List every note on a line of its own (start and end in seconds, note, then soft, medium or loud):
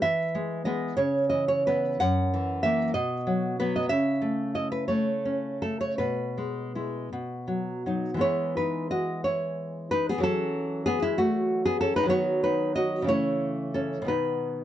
0.02 0.95 E3 medium
0.02 0.63 E5 medium
0.35 0.65 G#3 medium
0.65 0.94 G#3 soft
0.65 0.94 B3 medium
0.65 0.96 D#5 medium
0.97 1.98 C#3 medium
0.97 1.29 C#5 medium
1.30 1.66 E3 medium
1.30 1.48 D#5 medium
1.48 1.66 C#5 medium
1.67 1.98 E3 soft
1.67 1.98 B3 medium
1.67 2.00 B4 medium
2.00 2.92 F#2 medium
2.00 2.61 F#5 medium
2.34 2.63 E3 medium
2.63 2.92 E3 soft
2.63 2.92 A#3 soft
2.63 2.93 E5 medium
2.94 3.88 B2 medium
2.94 3.56 D#5 medium
3.27 3.59 F#3 soft
3.60 3.88 F#3 soft
3.60 3.88 B3 medium
3.60 3.75 B4 medium
3.76 3.89 D#5 medium
3.89 5.95 C#3 medium
3.89 4.52 E5 medium
4.22 4.88 A3 soft
4.55 5.61 E4 soft
4.55 4.71 D#5 medium
4.72 4.87 B4 medium
4.88 5.61 A3 soft
4.88 5.58 C#5 medium
5.25 5.99 C#4 soft
5.62 5.99 A3 soft
5.62 5.80 A4 medium
5.81 5.98 C#5 medium
5.98 7.08 B2 medium
5.98 7.81 B4 medium
6.38 6.74 G#3 soft
6.75 7.08 G#3 soft
6.75 7.09 E4 soft
7.13 8.19 B2 medium
7.48 7.85 F#3 soft
7.86 8.14 F#3 soft
7.86 8.19 D#4 soft
8.14 10.17 E3 medium
8.14 10.18 G#3 soft
8.19 10.09 B3 soft
8.19 8.54 E4 medium
8.19 8.55 C#5 medium
8.57 8.89 D#4 soft
8.57 8.90 B4 medium
8.91 9.23 F#4 medium
8.91 9.23 D#5 medium
9.24 9.88 E4 medium
9.24 9.89 C#5 medium
9.91 10.07 D#4 medium
9.91 10.08 B4 medium
10.09 10.24 B3 medium
10.09 10.23 G#4 medium
10.18 12.03 E3 medium
10.18 12.04 F#3 medium
10.23 10.83 C#4 medium
10.23 10.84 A4 medium
10.86 11.02 B3 medium
10.86 11.02 G#4 medium
11.02 11.18 G#3 medium
11.02 11.18 E4 medium
11.18 11.63 A3 medium
11.18 11.63 F#4 medium
11.65 11.80 B3 medium
11.65 11.80 G#4 medium
11.81 11.96 C#4 medium
11.81 11.96 A4 medium
11.96 12.08 D#4 medium
11.96 12.09 B4 loud
12.03 13.03 D#3 medium
12.03 13.04 F#3 medium
12.09 13.05 B3 medium
12.09 12.42 F#4 medium
12.09 12.42 C#5 loud
12.44 12.75 D#4 medium
12.44 12.75 B4 medium
12.76 13.08 F#4 medium
12.76 13.08 D#5 medium
13.02 14.01 C#3 medium
13.02 14.04 E3 soft
13.07 14.06 A3 soft
13.07 13.72 E4 medium
13.07 13.73 C#5 medium
13.74 14.08 C#4 medium
13.74 14.06 A4 medium
14.02 14.64 B2 medium
14.02 14.64 D#3 soft
14.06 14.64 B3 soft
14.06 14.64 D#4 medium
14.06 14.64 B4 medium